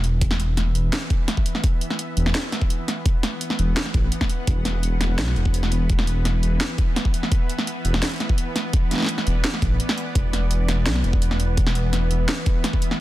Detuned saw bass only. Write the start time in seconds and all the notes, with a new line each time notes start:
Already playing: E1
0.75 E1
2.17 E1
3.59 E1
3.94 A1
4.48 E1
5.01 E1
5.19 B1
5.37 E1
6.43 E1
7.85 E1
9.27 E1
9.62 A1
10.15 E1
10.69 E1
10.86 B1
11.04 E1
12.11 E1